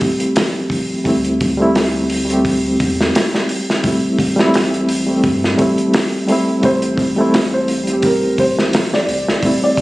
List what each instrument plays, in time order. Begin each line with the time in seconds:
Already playing: reed electric piano G3 A3 C4 E4 G4
0.01 kick, open hi-hat
0.20 closed hi-hat
0.36 sub bass A#1, snare, open hi-hat
0.70 kick, open hi-hat
1.04 sub bass D2, reed electric piano G3 A3 C4, kick, open hi-hat
1.09 reed electric piano E4
1.24 closed hi-hat
1.40 kick, open hi-hat
1.57 reed electric piano G3 A3 C4
1.62 reed electric piano E4
1.75 snare, open hi-hat
2.10 open hi-hat
2.25 reed electric piano G3 A3
2.30 reed electric piano C4 G4, closed hi-hat
2.45 kick, open hi-hat
2.80 sub bass E2, kick, open hi-hat
3.01 snare
3.15 snare, open hi-hat
3.35 snare
3.49 open hi-hat
3.70 snare
3.83 reed electric piano G3 A3 C4, kick, open hi-hat
3.87 reed electric piano E4
4.19 sub bass A1, kick, open hi-hat
4.36 reed electric piano G3 A3 C4, snare
4.41 reed electric piano E4
4.54 snare, open hi-hat
4.74 closed hi-hat
4.89 open hi-hat
5.07 reed electric piano G3 A3 C4
5.11 reed electric piano G4
5.24 sub bass G2, kick, open hi-hat
5.44 snare
5.57 sub bass A1, reed electric piano G3 A3 C4, kick, open hi-hat
5.62 reed electric piano E4
5.78 closed hi-hat
5.94 snare, open hi-hat
6.28 reed electric piano G3 A3 C4, open hi-hat
6.32 reed electric piano E4
6.62 sub bass A1, reed electric piano G3 A3 C4, felt piano C5, kick, open hi-hat
6.67 reed electric piano E4
6.82 closed hi-hat
6.98 kick, open hi-hat
7.16 reed electric piano G3 A3 C4
7.21 reed electric piano E4
7.34 snare, open hi-hat
7.54 felt piano C5
7.68 open hi-hat
7.84 reed electric piano E3 G3, closed hi-hat
7.90 reed electric piano C4 G4
8.02 sub bass A1, felt piano A#4, kick, open hi-hat
8.38 felt piano C5, kick, open hi-hat
8.59 snare
8.73 sub bass A#1, snare, open hi-hat
8.94 felt piano D5, snare
9.08 sub bass C2, open hi-hat
9.28 snare
9.42 reed electric piano G3 A3 C4, kick, open hi-hat
9.46 reed electric piano E4
9.64 felt piano D5
9.77 kick, open hi-hat